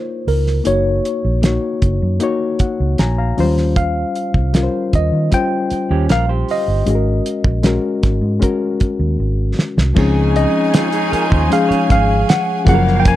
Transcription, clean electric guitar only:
5.91 C#4 G4
6.10 F4 A#4
6.29 G4 C5
10.74 C4 F4
10.93 D#4 G#4
11.12 F4 A#4
11.30 F4 C5
11.69 G#4 C#5

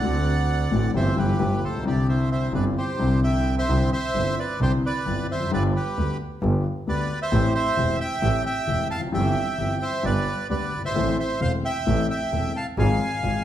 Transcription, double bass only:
0.03 D2
0.72 A1
0.95 G1
1.17 G1
1.39 G1
1.62 A#1
1.85 C2
2.53 G1
2.99 C2
3.69 C2
4.15 G1
4.60 C2
5.06 G1
5.29 F1
5.52 G1
5.97 D2
6.42 G1
6.88 D2
7.32 A1
7.78 E1
8.22 A1
8.68 E1
8.90 F1
9.13 G1
9.59 G1
10.05 G1
10.50 D2
10.73 G1
10.96 A1
11.42 E1
11.87 A1
12.33 E1
12.78 G#1
13.23 G#1

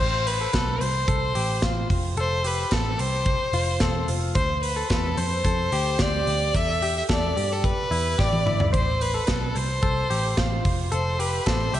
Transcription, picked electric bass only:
0.00 A1
0.54 B1
0.81 C2
1.08 C2
1.35 A1
1.63 A1
1.90 F1
2.17 F1
2.72 A1
2.99 C2
3.53 F1
3.81 E1
4.08 F1
4.35 D2
4.90 E2
5.17 F2
5.44 F2
5.72 D2
6.00 D2
6.27 D2
6.55 E2
7.09 E2
7.37 G2
7.91 E2
8.19 A1
8.46 G1
8.73 A1
9.28 B1
9.56 C2
9.83 C2
10.11 A1
10.38 A1
10.65 F1
10.92 F1
11.47 A1
11.73 C2

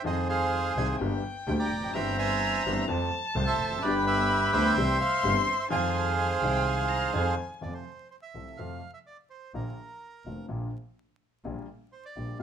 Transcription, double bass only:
0.04 F2
0.76 C2
0.99 G1
1.47 D2
1.71 F1
1.94 G1
2.65 G1
2.89 F2
3.35 C2
3.59 F1
3.82 G1
4.53 D2
4.76 C2
5.24 G1
5.71 F2
6.42 C2
7.13 F2
7.62 F2
8.35 C2
8.58 F2
9.54 A#1
10.25 F1
10.49 A#1
11.45 A#1
12.16 A#1

